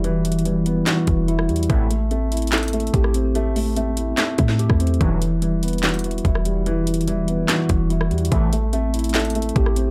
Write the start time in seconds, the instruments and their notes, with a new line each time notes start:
Already playing: 808-style bass E1, grand piano E3 G3 B3 E4, tine electric piano G3 E4 F#4
0.04 tine electric piano E3, grand piano E3, closed hi-hat
0.25 grand piano E3, closed hi-hat
0.32 closed hi-hat
0.39 closed hi-hat
0.45 grand piano E3, tine electric piano G3, closed hi-hat
0.66 grand piano B3, closed hi-hat
0.87 grand piano E3, tine electric piano F#4, snare, clap, closed hi-hat
1.07 808-style bass E1, grand piano E3, kick, closed hi-hat
1.28 tine electric piano E4, grand piano E4, closed hi-hat
1.39 cross-stick
1.49 808-style bass E2, grand piano G3, closed hi-hat
1.56 closed hi-hat
1.63 closed hi-hat
1.70 808-style bass A1, analog polysynth A2 C3 E3 G3 B3, tine electric piano A3, grand piano A3, kick, closed hi-hat
1.90 grand piano A3, closed hi-hat
2.11 grand piano A3, tine electric piano C4, closed hi-hat
2.32 grand piano E4, closed hi-hat
2.37 closed hi-hat
2.42 closed hi-hat
2.47 closed hi-hat
2.52 grand piano A3, tine electric piano A4, snare, clap, closed hi-hat
2.58 closed hi-hat
2.63 closed hi-hat
2.68 closed hi-hat
2.73 grand piano A3, closed hi-hat
2.80 closed hi-hat
2.87 closed hi-hat
2.94 808-style bass A1, tine electric piano G4, grand piano G4, kick, closed hi-hat
3.04 cross-stick
3.14 grand piano C4, closed hi-hat
3.35 tine electric piano A3, grand piano A3, closed hi-hat
3.56 grand piano A3, open hi-hat
3.76 grand piano A3, tine electric piano C4, closed hi-hat
3.97 grand piano E4, closed hi-hat
4.18 grand piano A3, tine electric piano A4, snare, clap, closed hi-hat
4.38 808-style bass A2, grand piano A3, kick, closed hi-hat
4.49 snare
4.59 tine electric piano G4, grand piano G4, closed hi-hat
4.70 808-style bass E2, kick, cross-stick
4.80 grand piano C4, closed hi-hat
4.87 closed hi-hat
4.94 closed hi-hat
5.01 808-style bass E1, analog polysynth G2 B2 D3 F#3 C#4, grand piano E3, tine electric piano E3, kick, closed hi-hat
5.21 grand piano E3, closed hi-hat
5.42 grand piano E3, tine electric piano G3, closed hi-hat
5.63 grand piano B3, closed hi-hat
5.68 closed hi-hat
5.73 closed hi-hat
5.78 closed hi-hat
5.83 grand piano E3, tine electric piano F#4, snare, clap, closed hi-hat
5.89 closed hi-hat
5.94 closed hi-hat
5.99 closed hi-hat
6.04 grand piano E3, closed hi-hat
6.11 closed hi-hat
6.18 closed hi-hat
6.25 808-style bass E1, tine electric piano E4, grand piano E4, kick, closed hi-hat
6.35 cross-stick
6.45 grand piano G3, closed hi-hat
6.66 tine electric piano E3, grand piano E3, closed hi-hat
6.87 grand piano E3, closed hi-hat
6.94 closed hi-hat
7.01 closed hi-hat
7.08 grand piano E3, tine electric piano G3, closed hi-hat
7.28 grand piano B3, closed hi-hat
7.49 grand piano E3, tine electric piano F#4, snare, clap, closed hi-hat
7.69 808-style bass E1, grand piano E3, kick, closed hi-hat
7.90 tine electric piano E4, grand piano E4, closed hi-hat
8.01 cross-stick
8.11 808-style bass E2, grand piano G3, closed hi-hat
8.18 closed hi-hat
8.25 closed hi-hat
8.32 808-style bass A1, analog polysynth A2 C3 E3 G3 B3, tine electric piano A3, grand piano A3, kick, closed hi-hat
8.52 grand piano A3, closed hi-hat
8.73 grand piano A3, tine electric piano C4, closed hi-hat
8.94 grand piano E4, closed hi-hat
8.99 closed hi-hat
9.04 closed hi-hat
9.09 closed hi-hat
9.14 grand piano A3, tine electric piano A4, snare, clap, closed hi-hat
9.20 closed hi-hat
9.25 closed hi-hat
9.30 closed hi-hat
9.35 grand piano A3, closed hi-hat
9.42 closed hi-hat
9.49 closed hi-hat
9.56 808-style bass A1, tine electric piano G4, grand piano G4, kick, closed hi-hat
9.66 cross-stick
9.76 grand piano C4, closed hi-hat